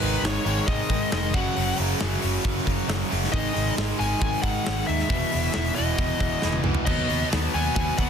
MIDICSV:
0, 0, Header, 1, 7, 480
1, 0, Start_track
1, 0, Key_signature, 5, "minor"
1, 0, Tempo, 442804
1, 1701, Time_signature, 4, 2, 24, 8
1, 8776, End_track
2, 0, Start_track
2, 0, Title_t, "Lead electric guitar"
2, 0, Program_c, 0, 29
2, 0, Note_on_c, 0, 71, 84
2, 269, Note_on_c, 0, 73, 83
2, 288, Note_off_c, 0, 71, 0
2, 712, Note_off_c, 0, 73, 0
2, 730, Note_on_c, 0, 75, 99
2, 1182, Note_off_c, 0, 75, 0
2, 1224, Note_on_c, 0, 75, 91
2, 1453, Note_on_c, 0, 78, 94
2, 1470, Note_off_c, 0, 75, 0
2, 1903, Note_off_c, 0, 78, 0
2, 3601, Note_on_c, 0, 75, 107
2, 4056, Note_off_c, 0, 75, 0
2, 4329, Note_on_c, 0, 80, 104
2, 4566, Note_off_c, 0, 80, 0
2, 4579, Note_on_c, 0, 80, 112
2, 4790, Note_off_c, 0, 80, 0
2, 4794, Note_on_c, 0, 78, 106
2, 5253, Note_off_c, 0, 78, 0
2, 5278, Note_on_c, 0, 76, 91
2, 5993, Note_off_c, 0, 76, 0
2, 6006, Note_on_c, 0, 76, 87
2, 6233, Note_off_c, 0, 76, 0
2, 6237, Note_on_c, 0, 75, 75
2, 7165, Note_off_c, 0, 75, 0
2, 7431, Note_on_c, 0, 75, 105
2, 7891, Note_off_c, 0, 75, 0
2, 8177, Note_on_c, 0, 80, 82
2, 8394, Note_off_c, 0, 80, 0
2, 8407, Note_on_c, 0, 80, 95
2, 8637, Note_off_c, 0, 80, 0
2, 8653, Note_on_c, 0, 78, 88
2, 8776, Note_off_c, 0, 78, 0
2, 8776, End_track
3, 0, Start_track
3, 0, Title_t, "Overdriven electric guitar"
3, 0, Program_c, 1, 29
3, 1915, Note_on_c, 1, 49, 86
3, 1922, Note_on_c, 1, 54, 98
3, 2144, Note_off_c, 1, 49, 0
3, 2152, Note_off_c, 1, 54, 0
3, 8776, End_track
4, 0, Start_track
4, 0, Title_t, "Overdriven electric guitar"
4, 0, Program_c, 2, 29
4, 18, Note_on_c, 2, 44, 97
4, 23, Note_on_c, 2, 51, 99
4, 32, Note_on_c, 2, 56, 97
4, 232, Note_off_c, 2, 44, 0
4, 242, Note_off_c, 2, 51, 0
4, 245, Note_on_c, 2, 44, 82
4, 247, Note_off_c, 2, 56, 0
4, 255, Note_on_c, 2, 51, 90
4, 260, Note_on_c, 2, 56, 98
4, 473, Note_off_c, 2, 44, 0
4, 481, Note_off_c, 2, 51, 0
4, 486, Note_on_c, 2, 44, 87
4, 492, Note_off_c, 2, 56, 0
4, 494, Note_on_c, 2, 51, 92
4, 505, Note_on_c, 2, 56, 92
4, 716, Note_off_c, 2, 44, 0
4, 729, Note_on_c, 2, 44, 100
4, 731, Note_off_c, 2, 56, 0
4, 732, Note_off_c, 2, 51, 0
4, 744, Note_on_c, 2, 56, 105
4, 745, Note_on_c, 2, 51, 111
4, 964, Note_off_c, 2, 44, 0
4, 966, Note_off_c, 2, 51, 0
4, 977, Note_on_c, 2, 44, 80
4, 979, Note_on_c, 2, 51, 91
4, 981, Note_off_c, 2, 56, 0
4, 994, Note_on_c, 2, 56, 85
4, 1204, Note_off_c, 2, 44, 0
4, 1209, Note_off_c, 2, 51, 0
4, 1212, Note_off_c, 2, 56, 0
4, 1217, Note_on_c, 2, 44, 84
4, 1222, Note_on_c, 2, 51, 92
4, 1225, Note_on_c, 2, 56, 95
4, 1445, Note_off_c, 2, 44, 0
4, 1447, Note_off_c, 2, 51, 0
4, 1449, Note_off_c, 2, 56, 0
4, 1477, Note_on_c, 2, 42, 96
4, 1480, Note_on_c, 2, 49, 109
4, 1488, Note_on_c, 2, 54, 121
4, 1687, Note_off_c, 2, 42, 0
4, 1700, Note_off_c, 2, 49, 0
4, 1700, Note_on_c, 2, 42, 98
4, 1706, Note_off_c, 2, 54, 0
4, 1713, Note_on_c, 2, 49, 100
4, 1719, Note_on_c, 2, 54, 107
4, 1941, Note_off_c, 2, 42, 0
4, 1947, Note_off_c, 2, 49, 0
4, 1954, Note_on_c, 2, 42, 99
4, 1960, Note_off_c, 2, 54, 0
4, 1960, Note_on_c, 2, 49, 100
4, 1973, Note_on_c, 2, 54, 95
4, 2173, Note_off_c, 2, 42, 0
4, 2183, Note_off_c, 2, 49, 0
4, 2184, Note_off_c, 2, 54, 0
4, 2186, Note_on_c, 2, 42, 96
4, 2196, Note_on_c, 2, 49, 92
4, 2197, Note_on_c, 2, 54, 95
4, 2407, Note_off_c, 2, 42, 0
4, 2414, Note_off_c, 2, 49, 0
4, 2420, Note_on_c, 2, 42, 88
4, 2421, Note_off_c, 2, 54, 0
4, 2427, Note_on_c, 2, 49, 94
4, 2434, Note_on_c, 2, 54, 89
4, 2641, Note_off_c, 2, 42, 0
4, 2652, Note_off_c, 2, 49, 0
4, 2654, Note_on_c, 2, 42, 114
4, 2658, Note_off_c, 2, 54, 0
4, 2665, Note_on_c, 2, 49, 108
4, 2671, Note_on_c, 2, 54, 117
4, 2873, Note_off_c, 2, 42, 0
4, 2877, Note_off_c, 2, 49, 0
4, 2886, Note_off_c, 2, 54, 0
4, 2886, Note_on_c, 2, 42, 81
4, 2890, Note_on_c, 2, 49, 86
4, 2899, Note_on_c, 2, 54, 104
4, 3112, Note_off_c, 2, 42, 0
4, 3126, Note_off_c, 2, 49, 0
4, 3126, Note_on_c, 2, 42, 82
4, 3128, Note_off_c, 2, 54, 0
4, 3139, Note_on_c, 2, 49, 88
4, 3141, Note_on_c, 2, 54, 92
4, 3355, Note_off_c, 2, 42, 0
4, 3360, Note_off_c, 2, 49, 0
4, 3368, Note_on_c, 2, 42, 92
4, 3369, Note_off_c, 2, 54, 0
4, 3373, Note_on_c, 2, 49, 98
4, 3382, Note_on_c, 2, 54, 101
4, 3592, Note_off_c, 2, 42, 0
4, 3596, Note_on_c, 2, 44, 107
4, 3602, Note_off_c, 2, 49, 0
4, 3607, Note_off_c, 2, 54, 0
4, 3608, Note_on_c, 2, 51, 110
4, 3618, Note_on_c, 2, 56, 123
4, 3822, Note_off_c, 2, 44, 0
4, 3835, Note_on_c, 2, 44, 99
4, 3838, Note_off_c, 2, 51, 0
4, 3847, Note_off_c, 2, 56, 0
4, 3851, Note_on_c, 2, 51, 111
4, 3852, Note_on_c, 2, 56, 98
4, 4060, Note_off_c, 2, 44, 0
4, 4071, Note_off_c, 2, 51, 0
4, 4073, Note_on_c, 2, 44, 89
4, 4084, Note_on_c, 2, 51, 98
4, 4087, Note_off_c, 2, 56, 0
4, 4091, Note_on_c, 2, 56, 102
4, 4299, Note_off_c, 2, 44, 0
4, 4309, Note_off_c, 2, 51, 0
4, 4312, Note_on_c, 2, 44, 89
4, 4322, Note_on_c, 2, 51, 99
4, 4327, Note_off_c, 2, 56, 0
4, 4332, Note_on_c, 2, 56, 111
4, 4546, Note_off_c, 2, 44, 0
4, 4552, Note_off_c, 2, 51, 0
4, 4556, Note_off_c, 2, 56, 0
4, 4559, Note_on_c, 2, 44, 100
4, 4565, Note_on_c, 2, 51, 108
4, 4569, Note_on_c, 2, 56, 119
4, 4769, Note_off_c, 2, 44, 0
4, 4780, Note_off_c, 2, 51, 0
4, 4782, Note_on_c, 2, 44, 81
4, 4786, Note_off_c, 2, 56, 0
4, 4793, Note_on_c, 2, 51, 85
4, 4799, Note_on_c, 2, 56, 92
4, 5009, Note_off_c, 2, 44, 0
4, 5022, Note_on_c, 2, 44, 83
4, 5026, Note_off_c, 2, 51, 0
4, 5028, Note_off_c, 2, 56, 0
4, 5039, Note_on_c, 2, 51, 84
4, 5041, Note_on_c, 2, 56, 86
4, 5262, Note_off_c, 2, 44, 0
4, 5271, Note_off_c, 2, 51, 0
4, 5275, Note_on_c, 2, 44, 91
4, 5280, Note_off_c, 2, 56, 0
4, 5284, Note_on_c, 2, 51, 96
4, 5293, Note_on_c, 2, 56, 100
4, 5513, Note_off_c, 2, 44, 0
4, 5517, Note_off_c, 2, 51, 0
4, 5519, Note_on_c, 2, 40, 95
4, 5522, Note_off_c, 2, 56, 0
4, 5523, Note_on_c, 2, 47, 93
4, 5530, Note_on_c, 2, 52, 102
4, 5743, Note_off_c, 2, 40, 0
4, 5748, Note_off_c, 2, 47, 0
4, 5756, Note_on_c, 2, 40, 88
4, 5761, Note_on_c, 2, 47, 85
4, 5762, Note_off_c, 2, 52, 0
4, 5775, Note_on_c, 2, 52, 100
4, 5969, Note_off_c, 2, 40, 0
4, 5982, Note_on_c, 2, 40, 86
4, 5984, Note_off_c, 2, 47, 0
4, 5986, Note_off_c, 2, 52, 0
4, 5997, Note_on_c, 2, 47, 89
4, 5999, Note_on_c, 2, 52, 92
4, 6213, Note_off_c, 2, 40, 0
4, 6226, Note_off_c, 2, 47, 0
4, 6226, Note_on_c, 2, 40, 82
4, 6233, Note_off_c, 2, 52, 0
4, 6239, Note_on_c, 2, 47, 90
4, 6246, Note_on_c, 2, 52, 96
4, 6475, Note_off_c, 2, 40, 0
4, 6484, Note_off_c, 2, 47, 0
4, 6486, Note_off_c, 2, 52, 0
4, 6488, Note_on_c, 2, 40, 107
4, 6497, Note_on_c, 2, 47, 104
4, 6499, Note_on_c, 2, 52, 115
4, 6705, Note_off_c, 2, 40, 0
4, 6718, Note_off_c, 2, 47, 0
4, 6718, Note_on_c, 2, 40, 79
4, 6724, Note_off_c, 2, 52, 0
4, 6731, Note_on_c, 2, 47, 87
4, 6737, Note_on_c, 2, 52, 85
4, 6945, Note_off_c, 2, 40, 0
4, 6958, Note_off_c, 2, 47, 0
4, 6958, Note_on_c, 2, 40, 85
4, 6960, Note_off_c, 2, 52, 0
4, 6971, Note_on_c, 2, 47, 76
4, 6973, Note_on_c, 2, 52, 99
4, 7191, Note_off_c, 2, 40, 0
4, 7199, Note_off_c, 2, 47, 0
4, 7204, Note_on_c, 2, 40, 85
4, 7206, Note_off_c, 2, 52, 0
4, 7212, Note_on_c, 2, 47, 97
4, 7219, Note_on_c, 2, 52, 102
4, 7432, Note_off_c, 2, 47, 0
4, 7437, Note_off_c, 2, 40, 0
4, 7441, Note_off_c, 2, 52, 0
4, 7445, Note_on_c, 2, 47, 93
4, 7446, Note_on_c, 2, 54, 105
4, 7458, Note_on_c, 2, 59, 110
4, 7670, Note_off_c, 2, 47, 0
4, 7683, Note_on_c, 2, 47, 95
4, 7686, Note_off_c, 2, 54, 0
4, 7691, Note_off_c, 2, 59, 0
4, 7691, Note_on_c, 2, 54, 93
4, 7695, Note_on_c, 2, 59, 107
4, 7924, Note_off_c, 2, 47, 0
4, 7935, Note_off_c, 2, 54, 0
4, 7937, Note_on_c, 2, 47, 89
4, 7939, Note_on_c, 2, 54, 101
4, 7951, Note_off_c, 2, 59, 0
4, 7955, Note_on_c, 2, 59, 97
4, 8155, Note_off_c, 2, 47, 0
4, 8168, Note_on_c, 2, 47, 88
4, 8174, Note_off_c, 2, 54, 0
4, 8178, Note_on_c, 2, 54, 92
4, 8181, Note_off_c, 2, 59, 0
4, 8186, Note_on_c, 2, 59, 95
4, 8397, Note_off_c, 2, 47, 0
4, 8410, Note_on_c, 2, 47, 94
4, 8411, Note_off_c, 2, 54, 0
4, 8420, Note_off_c, 2, 59, 0
4, 8424, Note_on_c, 2, 54, 108
4, 8424, Note_on_c, 2, 59, 109
4, 8639, Note_off_c, 2, 47, 0
4, 8651, Note_off_c, 2, 54, 0
4, 8652, Note_on_c, 2, 47, 78
4, 8664, Note_on_c, 2, 54, 92
4, 8669, Note_off_c, 2, 59, 0
4, 8673, Note_on_c, 2, 59, 86
4, 8776, Note_off_c, 2, 47, 0
4, 8776, Note_off_c, 2, 54, 0
4, 8776, Note_off_c, 2, 59, 0
4, 8776, End_track
5, 0, Start_track
5, 0, Title_t, "Overdriven electric guitar"
5, 0, Program_c, 3, 29
5, 0, Note_on_c, 3, 44, 80
5, 0, Note_on_c, 3, 51, 92
5, 0, Note_on_c, 3, 56, 91
5, 481, Note_off_c, 3, 56, 0
5, 483, Note_off_c, 3, 44, 0
5, 489, Note_off_c, 3, 51, 0
5, 6276, Note_on_c, 3, 40, 77
5, 7454, Note_off_c, 3, 40, 0
5, 8776, End_track
6, 0, Start_track
6, 0, Title_t, "Picked electric bass"
6, 0, Program_c, 4, 34
6, 22, Note_on_c, 4, 32, 90
6, 166, Note_off_c, 4, 32, 0
6, 251, Note_on_c, 4, 32, 91
6, 398, Note_off_c, 4, 32, 0
6, 493, Note_on_c, 4, 32, 81
6, 639, Note_off_c, 4, 32, 0
6, 733, Note_on_c, 4, 32, 92
6, 879, Note_off_c, 4, 32, 0
6, 972, Note_on_c, 4, 32, 90
6, 1119, Note_off_c, 4, 32, 0
6, 1223, Note_on_c, 4, 29, 92
6, 1452, Note_off_c, 4, 29, 0
6, 1452, Note_on_c, 4, 30, 88
6, 1599, Note_off_c, 4, 30, 0
6, 1706, Note_on_c, 4, 30, 97
6, 1849, Note_off_c, 4, 30, 0
6, 1946, Note_on_c, 4, 30, 90
6, 2088, Note_off_c, 4, 30, 0
6, 2192, Note_on_c, 4, 30, 86
6, 2333, Note_off_c, 4, 30, 0
6, 2429, Note_on_c, 4, 30, 82
6, 2571, Note_off_c, 4, 30, 0
6, 2652, Note_on_c, 4, 30, 87
6, 2799, Note_off_c, 4, 30, 0
6, 2890, Note_on_c, 4, 30, 89
6, 3037, Note_off_c, 4, 30, 0
6, 3122, Note_on_c, 4, 30, 97
6, 3272, Note_off_c, 4, 30, 0
6, 3390, Note_on_c, 4, 30, 96
6, 3531, Note_off_c, 4, 30, 0
6, 3607, Note_on_c, 4, 32, 93
6, 3755, Note_off_c, 4, 32, 0
6, 3861, Note_on_c, 4, 32, 97
6, 4005, Note_off_c, 4, 32, 0
6, 4098, Note_on_c, 4, 32, 93
6, 4243, Note_off_c, 4, 32, 0
6, 4336, Note_on_c, 4, 32, 92
6, 4481, Note_off_c, 4, 32, 0
6, 4568, Note_on_c, 4, 32, 94
6, 4715, Note_off_c, 4, 32, 0
6, 4810, Note_on_c, 4, 32, 89
6, 4957, Note_off_c, 4, 32, 0
6, 5074, Note_on_c, 4, 32, 94
6, 5214, Note_off_c, 4, 32, 0
6, 5304, Note_on_c, 4, 39, 99
6, 5447, Note_off_c, 4, 39, 0
6, 5527, Note_on_c, 4, 28, 93
6, 5675, Note_off_c, 4, 28, 0
6, 5794, Note_on_c, 4, 28, 88
6, 5934, Note_off_c, 4, 28, 0
6, 6029, Note_on_c, 4, 28, 89
6, 6170, Note_off_c, 4, 28, 0
6, 6283, Note_on_c, 4, 28, 85
6, 6420, Note_off_c, 4, 28, 0
6, 6486, Note_on_c, 4, 28, 83
6, 6634, Note_off_c, 4, 28, 0
6, 6727, Note_on_c, 4, 28, 91
6, 6875, Note_off_c, 4, 28, 0
6, 6985, Note_on_c, 4, 28, 98
6, 7127, Note_off_c, 4, 28, 0
6, 7216, Note_on_c, 4, 37, 90
6, 7361, Note_off_c, 4, 37, 0
6, 7445, Note_on_c, 4, 39, 90
6, 7594, Note_off_c, 4, 39, 0
6, 7691, Note_on_c, 4, 39, 86
6, 7838, Note_off_c, 4, 39, 0
6, 7951, Note_on_c, 4, 39, 88
6, 8092, Note_off_c, 4, 39, 0
6, 8180, Note_on_c, 4, 39, 83
6, 8324, Note_off_c, 4, 39, 0
6, 8412, Note_on_c, 4, 39, 91
6, 8559, Note_off_c, 4, 39, 0
6, 8650, Note_on_c, 4, 39, 92
6, 8776, Note_off_c, 4, 39, 0
6, 8776, End_track
7, 0, Start_track
7, 0, Title_t, "Drums"
7, 18, Note_on_c, 9, 46, 59
7, 127, Note_off_c, 9, 46, 0
7, 271, Note_on_c, 9, 38, 117
7, 379, Note_off_c, 9, 38, 0
7, 502, Note_on_c, 9, 46, 61
7, 610, Note_off_c, 9, 46, 0
7, 733, Note_on_c, 9, 46, 81
7, 736, Note_on_c, 9, 36, 109
7, 842, Note_off_c, 9, 46, 0
7, 844, Note_off_c, 9, 36, 0
7, 972, Note_on_c, 9, 46, 65
7, 973, Note_on_c, 9, 36, 91
7, 1081, Note_off_c, 9, 36, 0
7, 1081, Note_off_c, 9, 46, 0
7, 1210, Note_on_c, 9, 46, 94
7, 1217, Note_on_c, 9, 38, 118
7, 1319, Note_off_c, 9, 46, 0
7, 1325, Note_off_c, 9, 38, 0
7, 1452, Note_on_c, 9, 46, 71
7, 1454, Note_on_c, 9, 36, 104
7, 1560, Note_off_c, 9, 46, 0
7, 1562, Note_off_c, 9, 36, 0
7, 1696, Note_on_c, 9, 46, 92
7, 1804, Note_off_c, 9, 46, 0
7, 1928, Note_on_c, 9, 46, 64
7, 2036, Note_off_c, 9, 46, 0
7, 2174, Note_on_c, 9, 38, 118
7, 2283, Note_off_c, 9, 38, 0
7, 2410, Note_on_c, 9, 46, 69
7, 2518, Note_off_c, 9, 46, 0
7, 2645, Note_on_c, 9, 46, 84
7, 2654, Note_on_c, 9, 36, 112
7, 2754, Note_off_c, 9, 46, 0
7, 2762, Note_off_c, 9, 36, 0
7, 2892, Note_on_c, 9, 46, 62
7, 2895, Note_on_c, 9, 36, 87
7, 3001, Note_off_c, 9, 46, 0
7, 3003, Note_off_c, 9, 36, 0
7, 3133, Note_on_c, 9, 46, 89
7, 3139, Note_on_c, 9, 38, 113
7, 3241, Note_off_c, 9, 46, 0
7, 3247, Note_off_c, 9, 38, 0
7, 3384, Note_on_c, 9, 46, 67
7, 3492, Note_off_c, 9, 46, 0
7, 3513, Note_on_c, 9, 38, 38
7, 3615, Note_on_c, 9, 46, 86
7, 3616, Note_on_c, 9, 36, 115
7, 3621, Note_off_c, 9, 38, 0
7, 3723, Note_off_c, 9, 46, 0
7, 3725, Note_off_c, 9, 36, 0
7, 3863, Note_on_c, 9, 46, 62
7, 3971, Note_off_c, 9, 46, 0
7, 4101, Note_on_c, 9, 38, 121
7, 4209, Note_off_c, 9, 38, 0
7, 4341, Note_on_c, 9, 46, 57
7, 4450, Note_off_c, 9, 46, 0
7, 4568, Note_on_c, 9, 46, 84
7, 4570, Note_on_c, 9, 36, 114
7, 4676, Note_off_c, 9, 46, 0
7, 4678, Note_off_c, 9, 36, 0
7, 4799, Note_on_c, 9, 46, 67
7, 4807, Note_on_c, 9, 36, 94
7, 4908, Note_off_c, 9, 46, 0
7, 4916, Note_off_c, 9, 36, 0
7, 5050, Note_on_c, 9, 46, 88
7, 5057, Note_on_c, 9, 38, 121
7, 5159, Note_off_c, 9, 46, 0
7, 5165, Note_off_c, 9, 38, 0
7, 5280, Note_on_c, 9, 46, 71
7, 5389, Note_off_c, 9, 46, 0
7, 5414, Note_on_c, 9, 38, 34
7, 5522, Note_off_c, 9, 38, 0
7, 5528, Note_on_c, 9, 36, 120
7, 5530, Note_on_c, 9, 46, 94
7, 5637, Note_off_c, 9, 36, 0
7, 5639, Note_off_c, 9, 46, 0
7, 5765, Note_on_c, 9, 46, 69
7, 5873, Note_off_c, 9, 46, 0
7, 5996, Note_on_c, 9, 46, 92
7, 6002, Note_on_c, 9, 38, 116
7, 6104, Note_off_c, 9, 46, 0
7, 6111, Note_off_c, 9, 38, 0
7, 6241, Note_on_c, 9, 46, 63
7, 6350, Note_off_c, 9, 46, 0
7, 6488, Note_on_c, 9, 36, 112
7, 6491, Note_on_c, 9, 46, 82
7, 6596, Note_off_c, 9, 36, 0
7, 6599, Note_off_c, 9, 46, 0
7, 6723, Note_on_c, 9, 46, 62
7, 6726, Note_on_c, 9, 36, 87
7, 6831, Note_off_c, 9, 46, 0
7, 6834, Note_off_c, 9, 36, 0
7, 6960, Note_on_c, 9, 38, 67
7, 7068, Note_off_c, 9, 38, 0
7, 7073, Note_on_c, 9, 48, 69
7, 7181, Note_off_c, 9, 48, 0
7, 7194, Note_on_c, 9, 45, 91
7, 7303, Note_off_c, 9, 45, 0
7, 7312, Note_on_c, 9, 43, 102
7, 7420, Note_off_c, 9, 43, 0
7, 7440, Note_on_c, 9, 49, 105
7, 7449, Note_on_c, 9, 36, 116
7, 7548, Note_off_c, 9, 49, 0
7, 7558, Note_off_c, 9, 36, 0
7, 7692, Note_on_c, 9, 46, 61
7, 7800, Note_off_c, 9, 46, 0
7, 7938, Note_on_c, 9, 46, 80
7, 7944, Note_on_c, 9, 38, 118
7, 8046, Note_off_c, 9, 46, 0
7, 8053, Note_off_c, 9, 38, 0
7, 8173, Note_on_c, 9, 46, 59
7, 8281, Note_off_c, 9, 46, 0
7, 8406, Note_on_c, 9, 46, 81
7, 8415, Note_on_c, 9, 36, 112
7, 8514, Note_off_c, 9, 46, 0
7, 8523, Note_off_c, 9, 36, 0
7, 8645, Note_on_c, 9, 46, 64
7, 8656, Note_on_c, 9, 36, 89
7, 8754, Note_off_c, 9, 46, 0
7, 8764, Note_off_c, 9, 36, 0
7, 8776, End_track
0, 0, End_of_file